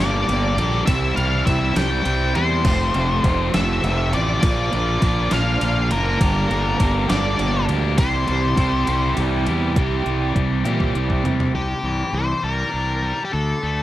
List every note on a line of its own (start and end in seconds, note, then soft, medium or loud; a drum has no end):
0.00 0.27 G1 medium
0.00 0.87 G2 medium
0.00 0.26 D3 medium
0.00 0.26 G3 medium
0.00 0.26 A#3 medium
0.00 0.27 D4 medium
0.00 0.56 G4 medium
0.00 0.82 D5 loud
0.27 0.57 G1 medium
0.27 0.56 D3 medium
0.27 0.56 G3 medium
0.27 0.56 A#3 medium
0.27 0.55 D4 medium
0.27 ride medium
0.56 0.86 A#1 medium
0.56 0.85 D3 medium
0.56 0.85 G3 medium
0.56 0.86 A#3 medium
0.56 0.87 D4 medium
0.56 0.85 G4 medium
0.56 ride medium
0.86 1.16 C2 medium
0.86 1.16 C3 medium
0.86 1.46 E3 loud
0.86 1.16 G3 medium
0.86 1.15 C4 medium
0.86 1.14 E4 medium
0.86 1.16 E5 loud
0.86 kick loud
0.86 ride loud
1.16 1.45 C2 medium
1.16 1.44 C3 medium
1.16 1.44 G3 medium
1.16 1.45 C4 medium
1.16 1.46 E4 medium
1.16 1.44 F5 loud
1.16 ride medium
1.46 1.75 C2 medium
1.46 1.75 C3 medium
1.46 1.77 E3 medium
1.46 1.75 G3 medium
1.46 1.74 C4 medium
1.46 1.73 E4 medium
1.46 1.77 E5 medium
1.46 kick medium
1.46 ride medium
1.75 2.04 C2 medium
1.75 2.02 C3 medium
1.75 2.64 E3 medium
1.75 2.03 G3 medium
1.75 2.03 C4 medium
1.75 2.04 E4 medium
1.75 2.37 G5 loud
1.75 snare loud
1.75 ride loud
2.04 2.34 C2 medium
2.04 2.34 C3 medium
2.04 2.33 G3 medium
2.04 2.33 C4 medium
2.04 2.33 E4 medium
2.04 ride medium
2.34 2.67 E2 medium
2.34 2.62 C3 medium
2.34 2.63 G3 medium
2.34 2.63 C4 medium
2.34 2.64 E4 medium
2.34 3.57 C5 loud
2.34 ride medium
2.63 2.93 F1 medium
2.63 3.54 F2 medium
2.63 2.94 C3 medium
2.63 2.93 F3 medium
2.63 2.93 A3 medium
2.63 2.92 C4 medium
2.63 kick loud
2.63 crash loud
2.68 3.27 F4 loud
2.94 3.23 F1 medium
2.94 3.22 C3 medium
2.94 3.22 F3 medium
2.94 3.22 A3 medium
2.94 3.23 C4 medium
2.94 ride medium
3.23 3.52 F1 medium
3.23 3.53 C3 medium
3.23 3.52 F3 medium
3.23 3.52 A3 medium
3.23 3.52 C4 medium
3.23 kick medium
3.23 ride medium
3.27 3.53 F4 medium
3.53 3.82 F1 medium
3.53 4.42 F2 medium
3.53 3.81 C3 medium
3.53 3.82 F3 medium
3.53 3.82 A3 medium
3.53 3.83 C4 medium
3.53 4.12 F4 medium
3.53 4.13 E5 loud
3.53 snare loud
3.53 ride medium
3.82 4.12 F1 medium
3.82 4.12 C3 medium
3.82 4.12 F3 medium
3.82 4.12 A3 medium
3.82 4.11 C4 medium
3.82 ride medium
4.12 4.42 A1 medium
4.12 4.42 C3 medium
4.12 4.42 F3 medium
4.12 4.42 A3 medium
4.12 4.42 C4 medium
4.12 4.44 F4 medium
4.12 5.33 D5 loud
4.12 ride medium
4.42 4.71 A#1 loud
4.42 4.71 A#2 medium
4.42 5.00 D3 medium
4.42 4.71 F3 medium
4.42 4.71 A#3 medium
4.42 4.70 D4 loud
4.42 5.04 F4 loud
4.42 kick loud
4.42 ride loud
4.71 5.01 A#1 medium
4.71 5.00 A#2 medium
4.71 5.01 F3 medium
4.71 5.01 A#3 medium
4.71 5.01 D4 medium
4.71 ride medium
5.01 5.30 A#1 medium
5.01 5.31 A#2 medium
5.01 5.32 D3 medium
5.01 5.31 F3 medium
5.01 5.31 A#3 medium
5.01 5.31 D4 medium
5.01 5.29 F4 medium
5.01 kick medium
5.01 ride medium
5.31 5.60 A#1 medium
5.31 5.60 A#2 medium
5.31 6.19 D3 medium
5.31 5.60 F3 medium
5.31 5.60 A#3 medium
5.31 5.61 D4 medium
5.31 5.89 F4 medium
5.31 5.93 F5 loud
5.31 snare loud
5.31 ride loud
5.61 5.89 A#1 medium
5.61 5.90 A#2 medium
5.61 5.90 F3 medium
5.61 5.89 A#3 medium
5.61 5.89 D4 medium
5.61 ride medium
5.90 6.19 F#1 medium
5.90 6.19 A#2 medium
5.90 6.19 F3 medium
5.90 6.19 A#3 medium
5.90 6.19 D4 medium
5.90 6.18 F4 medium
5.90 7.13 A#4 medium
5.90 ride medium
6.19 6.49 G1 medium
6.19 7.09 G2 loud
6.19 6.49 D3 medium
6.19 6.48 G3 medium
6.19 6.48 A#3 loud
6.19 6.48 D4 loud
6.19 6.81 G4 loud
6.19 kick loud
6.19 ride loud
6.49 6.78 G1 medium
6.49 6.77 D3 medium
6.49 6.78 G3 medium
6.49 6.78 A#3 medium
6.49 6.78 D4 medium
6.49 ride medium
6.78 7.08 G1 medium
6.78 7.09 D3 medium
6.78 7.08 G3 medium
6.78 7.07 A#3 medium
6.78 7.07 D4 medium
6.78 7.08 G4 medium
6.78 kick medium
6.78 ride medium
7.08 7.38 G1 medium
7.08 7.97 G2 medium
7.08 7.36 D3 medium
7.08 7.37 G3 medium
7.08 7.38 A#3 medium
7.08 7.38 D4 medium
7.08 7.68 G4 medium
7.08 7.65 D5 medium
7.08 snare loud
7.08 ride medium
7.38 7.67 G1 medium
7.38 7.68 D3 medium
7.38 7.68 G3 medium
7.38 7.67 A#3 medium
7.38 7.66 D4 medium
7.38 ride medium
7.68 7.97 D2 medium
7.68 7.97 D3 medium
7.68 7.97 G3 medium
7.68 7.98 A#3 medium
7.68 7.98 D4 medium
7.68 8.00 G4 medium
7.68 ride medium
7.98 8.26 C2 medium
7.98 8.27 C3 medium
7.98 8.55 E3 loud
7.98 8.27 G3 loud
7.98 8.26 C4 medium
7.98 8.26 E4 medium
7.98 8.58 G4 loud
7.98 9.13 C5 loud
7.98 kick loud
7.98 ride loud
8.27 8.57 C2 medium
8.27 8.56 C3 medium
8.27 8.56 G3 medium
8.27 8.57 C4 medium
8.27 8.57 E4 medium
8.27 ride medium
8.57 8.86 C2 medium
8.57 8.87 C3 medium
8.57 8.88 E3 medium
8.57 8.87 G3 medium
8.57 8.86 C4 medium
8.57 8.86 E4 medium
8.57 8.85 G4 medium
8.57 kick medium
8.57 ride medium
8.86 9.16 C2 medium
8.86 9.16 C3 medium
8.86 9.75 E3 medium
8.86 9.17 G3 medium
8.86 9.17 C4 medium
8.86 9.17 E4 medium
8.86 9.44 G4 medium
8.86 ride medium
9.17 9.45 C2 medium
9.17 9.46 C3 medium
9.17 9.46 G3 medium
9.17 9.45 C4 medium
9.17 9.45 E4 medium
9.17 ride medium
9.45 9.75 E2 medium
9.45 9.74 C3 medium
9.45 9.75 G3 medium
9.45 9.76 C4 medium
9.45 9.76 E4 medium
9.45 9.74 G4 medium
9.45 ride medium
9.75 10.02 C2 medium
9.75 10.63 C3 medium
9.75 10.64 E3 medium
9.75 10.64 G3 medium
9.75 10.64 C4 medium
9.75 10.64 E4 medium
9.75 10.63 G4 medium
9.75 kick loud
9.75 closed hi-hat medium
10.06 10.32 C2 medium
10.06 closed hi-hat medium
10.36 10.61 C2 medium
10.36 kick medium
10.36 closed hi-hat medium
10.64 10.91 A#2 medium
10.64 11.54 C3 medium
10.64 11.53 E3 medium
10.64 11.53 G3 medium
10.64 11.53 C4 medium
10.64 11.53 E4 medium
10.64 11.52 G4 medium
10.64 closed hi-hat medium
10.64 high tom medium
10.80 kick medium
10.95 11.21 C2 medium
10.95 closed hi-hat medium
11.10 kick medium
11.24 11.50 C3 medium
11.24 closed hi-hat medium
11.24 floor tom medium
11.40 floor tom medium
11.54 11.73 C2 medium
11.54 13.03 C3 medium
11.54 12.16 G4 medium
11.83 12.02 C2 medium
11.83 12.13 E3 medium
12.13 12.32 C2 medium
12.13 13.32 E3 soft
12.13 12.42 C5 medium
12.43 12.62 C2 medium
12.43 13.01 G3 medium
12.43 13.24 A#4 medium
12.72 13.11 C2 medium
12.72 13.32 D4 soft
13.02 13.33 G3 medium
13.25 13.32 G4 medium
13.32 13.52 D2 medium
13.32 13.83 D3 medium
13.32 13.83 A4 medium
13.63 13.82 D2 medium
13.63 13.83 A3 soft